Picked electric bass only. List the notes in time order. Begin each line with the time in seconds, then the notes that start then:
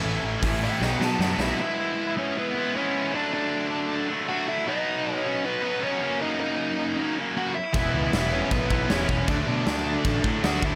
0.04 A1
0.23 A1
0.42 A1
0.81 B1
1.00 B2
1.19 F#2
1.38 B1
7.74 E1
7.93 C#2
8.13 E1
8.52 B1
8.71 B1
8.90 E1
9.09 E1
9.28 D2
9.47 B2
9.67 D2
10.05 A1
10.24 A2
10.44 D2
10.62 D2